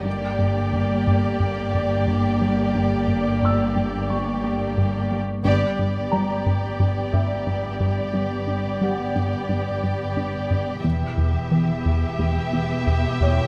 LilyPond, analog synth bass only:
\new Staff \with { instrumentName = "Analog synth bass" } { \clef bass \time 4/4 \key g \lydian \tempo 4 = 89 g,8 g,8 g,8 g,8 g,8 g,8 g,8 g8 | g,8 g,8 g,8 g,8 g,8 g,8 g,8 g8 | g,8 g,8 g8 g,8 g,8 g,8 g,8 g,8 | g,8 g,8 g8 g,8 g,8 g,8 g,8 g,8 |
e,8 e,8 e8 e,8 e,8 e,8 e,8 e,8 | }